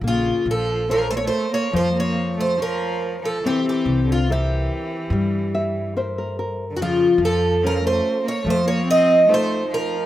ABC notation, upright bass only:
X:1
M:4/4
L:1/8
Q:1/4=72
K:Bbm
V:1 name="Upright bass" clef=bass
B,,, B,,,3 F,,4 | C,, C,,3 =G,,4 | F,, F,,3 F,,4 |]